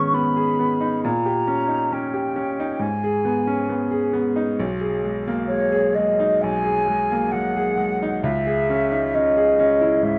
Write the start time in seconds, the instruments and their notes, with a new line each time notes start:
Already playing: grand piano D#3 B3 C#4 D#4 G#4, flute C#6
0.14 grand piano B3, flute B5
0.36 grand piano G#4
0.59 grand piano B3
0.81 grand piano D#4
1.03 grand piano A#2, flute A#5
1.26 grand piano G4
1.47 grand piano C#4
1.68 grand piano D#4
1.92 grand piano C#4, flute G5
2.14 grand piano G4
2.36 grand piano C#4
2.60 grand piano D#4
2.79 grand piano G#2, flute G#5
3.04 grand piano G#4
3.25 grand piano B3
3.47 grand piano C#4
3.69 grand piano B3
3.91 grand piano G#4
4.13 grand piano B3
4.36 grand piano D#4
4.60 grand piano B1
4.81 grand piano G#4
5.04 grand piano G#3
5.28 grand piano A#3
5.47 grand piano G#3, flute C#5
5.72 grand piano G#4
5.94 grand piano G#3, flute D#5
6.20 grand piano D#4
6.41 grand piano B1, flute G#5
6.64 grand piano G#4
6.88 grand piano G#3
7.12 grand piano A#3
7.31 grand piano G#3, flute F#5
7.56 grand piano G#4
7.78 grand piano G#3
8.02 grand piano D#4
8.22 grand piano C#2, flute E5
8.47 grand piano G#4
8.70 grand piano C#4
8.92 grand piano D#4
9.14 grand piano C#4, flute D#5
9.37 grand piano G#4
9.59 grand piano C#4
9.81 grand piano E4
10.03 grand piano G#2, flute E5